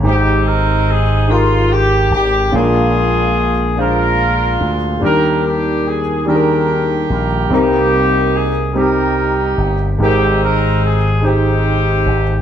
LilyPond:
<<
  \new Staff \with { instrumentName = "Horn section" } { \time 6/8 \key aes \lydian \tempo 4. = 48 << { g'8 bes'8 aes'8 f'8 g'8 g'8 | aes'4. bes'4 r8 | bes'8 g'8 aes'8 bes'4 bes'8 | g'4 aes'8 bes'4 r8 |
g'8 bes'8 aes'8 g'4. | } \\ { <c' ees'>4. r4. | <d' f'>4. <d' f'>4. | <d' g'>4. <d' g'>4. | <bes ees'>4. <ees' g'>4. |
<c' ees'>4. <c' ees'>4. | } >> }
  \new Staff \with { instrumentName = "Grand piano" } { \time 6/8 \key aes \lydian <aes ees' g' c''>4 r8 <aes ees' g' bes'>4 r8 | <aes des' d' f' bes'>4 r8 <aes d' f' c''>4 r8 | <g d' g' bes'>4 r8 <ees g d' aes' bes'>4 r8 | <g c' ees' bes'>4 r8 <g c' ees' g'>4 r8 |
<aes ees' g' bes' c''>4 r8 <aes ees' g' c''>4 r8 | }
  \new Staff \with { instrumentName = "Grand piano" } { \clef bass \time 6/8 \key aes \lydian aes,4. r4. | bes,4. r4. | ees4. r4. | c4. r4. |
aes,4. r4. | }
  \new Staff \with { instrumentName = "Slap bass" } { \clef bass \time 6/8 \key aes \lydian aes,,2~ aes,,8 aes,,8 | bes,,2~ bes,,8 d,8 | ees,2~ ees,8 bes,,8 | c,2~ c,8 g,,8 |
aes,,2~ aes,,8 aes,,8 | }
>>